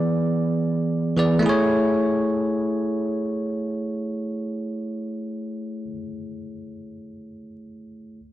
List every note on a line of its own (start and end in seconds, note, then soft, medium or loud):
0.00 1.12 E3 medium
0.00 1.13 B3 medium
0.00 1.14 G#4 medium
0.00 1.18 D5 medium
1.16 1.44 E3 medium
1.16 1.44 B3 soft
1.16 1.44 G#4 soft
1.16 1.45 D5 medium
1.39 5.84 A3 medium
1.39 5.87 E4 medium
1.46 5.91 G#4 medium
1.46 5.94 C#5 medium